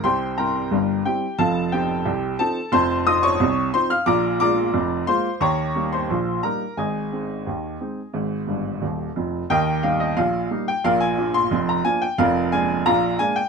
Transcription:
X:1
M:2/4
L:1/16
Q:1/4=89
K:Ab
V:1 name="Upright piano"
[cgc']2 [Bgb]4 [Gg]2 | [=Af=a]2 [Gg]4 [Aa]2 | [c=ac']2 [ee'] [dd']3 [cc'] [ff'] | [=db=d']2 [dbd']4 [cc']2 |
[dbd']3 [cc']3 [Bb]2 | [Aea]8- | [Aea]6 z2 | [K:Eb] [Beg]2 f e f3 g |
[Bdf] a2 c'2 b a g | [Bdf]2 a2 [dfb]2 a g |]
V:2 name="Upright piano" clef=bass
[C,,C,]2 [G,C=E]2 [G,,,G,,]2 [G,CE]2 | [F,,,F,,]2 [F,CE]2 [C,,C,]2 [F,CE]2 | [F,,,F,,]2 [F,CE]2 [C,,C,]2 [F,CE]2 | [B,,,B,,]2 [A,B,F]2 [F,,,F,,]2 [A,B,F]2 |
[E,,E,]2 [G,B,E]2 [B,,,B,,]2 [G,B,E]2 | [A,,,A,,]2 [A,CE]2 [E,,E,]2 [A,CE]2 | [A,,,A,,]2 [G,,,G,,]2 [E,,,E,,]2 [F,,,F,,]2 | [K:Eb] [E,,E,]2 [G,B,E]2 [B,,,B,,]2 [G,B,E]2 |
[B,,,B,,]2 [F,B,D]2 [F,,,F,,]2 [F,B,D]2 | [F,,,F,,]2 [A,B,D]2 [B,,,B,,]2 [A,B,D]2 |]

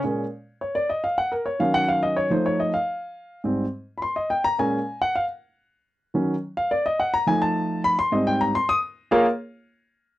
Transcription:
X:1
M:4/4
L:1/8
Q:1/4=212
K:Bbm
V:1 name="Grand piano"
z4 d =d e f | g B d f g f e d | c d e f4- f | z4 [_c'=c'] e =g b |
a3 g f z3 | z6 f =d | e g b a =a3 _c' | c' e =g b c' e' z2 |
[B,FABdf] z6 z |]
V:2 name="Grand piano" clef=bass
[B,,A,D] z6 z | z3 [E,G,D]4- [E,G,D] | [F,=A,E]3 z4 z | [A,,=G,C] z6 z |
[B,,A,D] z6 z | z3 [E,G,D] z4 | z3 [F,=A,E]4- [F,A,E] | z [A,,=G,C]3 z4 |
z8 |]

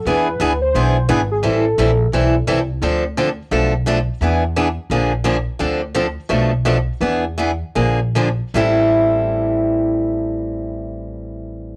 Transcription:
X:1
M:4/4
L:1/16
Q:"Swing" 1/4=173
K:Am
V:1 name="Soft synth lead"
B6 c6 B2 ^G2 | z16 | z16 | z16 |
z16 | z16 | z16 | z16 |]
V:2 name="Steel-string acoustic guitar"
[E,B,D^G]2 z2 [E,B,DG] z3 [E,B,DG]2 z2 [E,B,DG] z3 | [E,G,CEA]2 z2 [E,G,CEA] z3 [E,G,CEA]2 z2 [E,G,CEA] z3 | [D,F,CDA]2 z2 [D,F,CDA] z3 [B,,F,A,DA]2 z2 [B,,F,A,DA] z3 | [E,B,D^G]2 z2 [E,B,DG] z3 [D,F,_B,D_A]2 z2 [D,F,B,DA] z3 |
[D,F,CDA]2 z2 [D,F,CDA] z3 [B,,F,A,DA]2 z2 [B,,F,A,DA] z3 | [E,B,D^G]2 z2 [E,B,DG] z3 [D,F,_B,D_A]2 z2 [D,F,B,DA] z3 | [A,,E,G,CEA]16- | [A,,E,G,CEA]16 |]
V:3 name="Upright bass" clef=bass
E,,4 D,,4 B,,,4 ^G,,,4 | A,,,4 _B,,,4 =B,,,4 C,,4 | D,,8 B,,,8 | E,,8 _B,,,8 |
D,,8 B,,,8 | E,,8 _B,,,8 | A,,,16- | A,,,16 |]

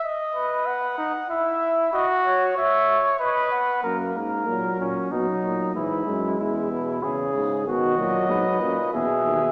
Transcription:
X:1
M:3/4
L:1/8
Q:1/4=94
K:F#dor
V:1 name="Trumpet"
d2 f2 e2 | d c e z d f | z6 | z6 |
d4 e2 |]
V:2 name="Trumpet"
z B2 D E2 | F2 c2 B2 | ^A A2 C D2 | E2 E2 G2 |
F2 B2 G2 |]
V:3 name="Trombone" clef=bass
z6 | z6 | ^A,2 F,2 F,2 | E, G,2 B,, C,2 |
D, F,2 ^A,, B,,2 |]
V:4 name="Bass trombone" clef=bass
z6 | z6 | F,, G,, ^A,, A,, B,, A,, | G,, F,, E,,2 E,, G,, |
B,, ^A,, G,, F,, E,, D,, |]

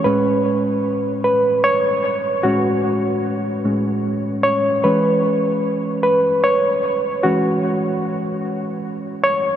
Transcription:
X:1
M:6/8
L:1/8
Q:3/8=50
K:E
V:1 name="Reed electric piano"
B3 B c2 | F4- F c | B3 B c2 | F4- F c |]
V:2 name="Reed electric piano" clef=bass
[A,,G,C]6 | [A,,G,C] z2 [A,,G,C] z2 | [E,G,C]6 | [E,G,C]6 |]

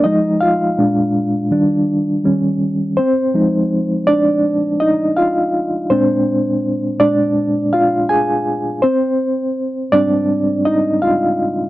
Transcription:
X:1
M:4/4
L:1/16
Q:"Swing 16ths" 1/4=82
K:Fdor
V:1 name="Reed electric piano"
e2 [Ff]12 z2 | [Cc]6 [Dd]4 [Ee]2 [Ff]3 z | [Cc]6 d4 [Ff]2 [Aa]3 z | [Cc]6 [Dd]4 [Ee]2 [Ff]3 z |]
V:2 name="Reed electric piano" clef=bass
[F,A,E]4 [B,,A,D]4 [E,G,D]4 [E,G,_D]4 | z2 [F,A,E]6 z8 | [B,,A,D]6 [B,,A,D]2 z8 | z6 [A,,G,C]8- [A,,G,C]2 |]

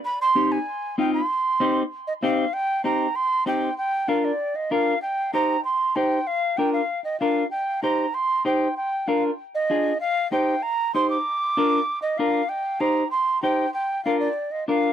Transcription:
X:1
M:4/4
L:1/8
Q:1/4=193
K:Cm
V:1 name="Flute"
=b c'2 a3 g c'- | c'4- c' e f2 | g2 b2 c'2 g2 | g2 f d2 e f2 |
g2 b2 c'2 g2 | f2 g f2 e f2 | g2 b2 c'2 g2 | g2 f z2 e3 |
f2 g2 b2 c' d'- | d'4- d' e f2 | g2 b2 c'2 g2 | g2 f d2 e f2 |]
V:2 name="Clean electric guitar"
z2 [CEG] z3 [CEF] z | z2 [CEG] z3 [CEG] z | z2 [CEG] z3 [CEG] z | z2 [DFB] z3 [DFB] z |
z2 [EGc] z3 [EGc] z | z2 [DFB] z3 [DFB] z | z2 [EGc] z3 [EGc] z | z2 [DFB] z3 [DFA] z |
z2 [EGc] z3 [EGc] z | z2 [DFB] z3 [DFB] z | z2 [EGc] z3 [EGc] z | z2 [DFB] z3 [DFB] z |]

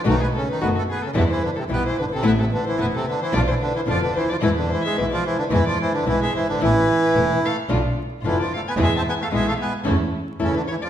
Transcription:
X:1
M:4/4
L:1/16
Q:1/4=110
K:Am
V:1 name="Violin"
B ^G A B ^F F G A B c B A =G c B A | E A B c E A B c d c B c d B c d | B B c e B d c B B d c B B e c B | B6 f2 z4 B d f ^g |
e a ^g f e f g2 z4 A B ^c d |]
V:2 name="Bandoneon"
[^D,^D] [B,B] [^C,^C] [D,D] [B,B] [A,A] [B,B] [C,C] [=D,=D] [E,E] [D,D] [=C,=C] [B,B] [E,E] [D,D] [C,C] | [B,B] [C,C] [D,D] [E,E] [B,B] [C,C] [D,D] [E,E] [F,F] [E,E] [D,D] [E,E] [F,F] [D,D] [E,E] [F,F] | [E,E] [D,D] [E,E] [^G,^G] [E,E] [F,F] [E,E] [D,D] [E,E] [F,F] [E,E] [D,D] [E,E] [G,G] [E,E] [D,D] | [E,E]6 [A,A]2 z4 [E,E] [F,F] [A,A] [B,B] |
[^G,^G] [Cc] [B,B] [A,A] [G,G] [A,A] [B,B]2 z4 [^C,^C] [D,D] [E,E] [F,F] |]
V:3 name="String section"
[A,B,^D]2 z2 [A,B,D]2 z2 [G,B,E]2 z2 [G,B,E]2 z2 | [A,B,E]2 z2 [A,B,E]2 z2 [B,DF]2 z2 [B,DF]2 z2 | [^G,B,E]2 z2 [G,B,E]2 z2 [G,B,E]2 z2 [G,B,E]2 z2 | [A,B,E]2 z2 [A,B,E]2 z2 [B,DF]2 z2 [B,DF]2 z2 |
[B,E^G]2 z2 [B,EG]2 z2 [^CEA]2 z2 [CEA]2 z2 |]
V:4 name="Nylon-string guitar"
[B,,^D,A,B,^F]2 z2 [B,,D,A,B,F]2 z2 [B,,E,G,B,E]2 z2 [B,,E,G,B,E]2 z2 | [E,A,B,E]2 z2 [E,A,B,E]2 z2 [B,,D,B,DF]2 z2 [B,,D,B,DF]2 z2 | [B,,E,^G,B,E]2 z2 [B,,E,G,B,E]2 z2 [B,,E,G,B,E]2 z2 [B,,E,G,B,E]2 z2 | [E,A,B,E]2 z2 [E,A,B,E]2 z2 [B,,D,B,DF]2 z2 [B,,D,B,DF]2 z2 |
[B,,E,^G,B,E]2 z2 [B,,E,G,B,E]2 z2 [E,A,^CE]2 z2 [E,A,CE]2 z2 |]
V:5 name="Double bass" clef=bass
B,,,2 z2 ^F,,,2 z2 E,,2 z2 B,,,2 G,,,2 | A,,,2 z2 E,,,2 z2 B,,,2 z2 F,,,2 D,,2 | E,,2 z2 B,,,2 z2 E,,2 z2 B,,,2 G,,,2 | A,,,2 z2 E,,,2 z2 B,,,2 z2 F,,,2 z2 |
E,,2 z2 B,,,2 z2 E,,2 z2 E,,2 ^D,,2 |]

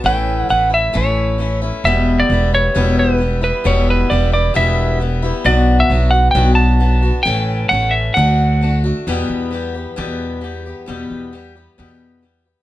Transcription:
X:1
M:4/4
L:1/16
Q:1/4=133
K:Edor
V:1 name="Electric slide guitar"
g4 f2 e2 c6 z2 | e3 d3 c4 B4 B2 | c2 B2 d2 d2 e4 z4 | d3 e3 f2 g2 a6 |
g4 f2 e2 f6 z2 | z16 | z16 |]
V:2 name="Steel-string acoustic guitar"
[A,,E,A,CE]4 [E,A,CE]2 [A,CE]2 [A,,E,A,CE]4 [E,A,CE]2 [A,CE]2 | [E,,B,,E,G,B,E]4 [E,G,B,E]2 [E,G,B,E]2 [E,,B,,E,G,B,E]4 [E,G,B,E]2 [E,G,B,E]2 | [E,,B,,E,G,B,E]4 [E,G,B,E]2 [E,G,B,E]2 [E,,B,,E,G,B,E]4 [E,G,B,E]2 [E,G,B,E]2 | [B,,F,B,DF]4 [F,B,DF]2 [B,DF]2 [B,,F,B,DF]4 [F,B,DF]2 [B,DF]2 |
[A,,E,A,CA]4 [E,A,CA]4 [D,A,DF]4 [D,A,DF]2 [A,DF]2 | [E,,B,,E,G,B,G]4 [E,G,B,G]2 [E,G,B,G]2 [E,,B,,E,G,B,G]4 [E,G,B,G]2 [E,G,B,G]2 | [E,,B,,E,G,B,G]4 [E,G,B,G]2 [E,G,B,G]2 [E,,B,,E,G,B,G]4 [E,G,B,G]2 [E,G,B,G]2 |]
V:3 name="Upright bass" clef=bass
A,,,4 A,,,4 A,,,8 | E,,,4 E,,,4 E,,,8 | E,,,4 E,,,4 E,,,8 | B,,,4 B,,,4 B,,,8 |
A,,,4 A,,,4 D,,8 | E,,2 E,,6 E,,8 | E,,2 E,,6 E,,8 |]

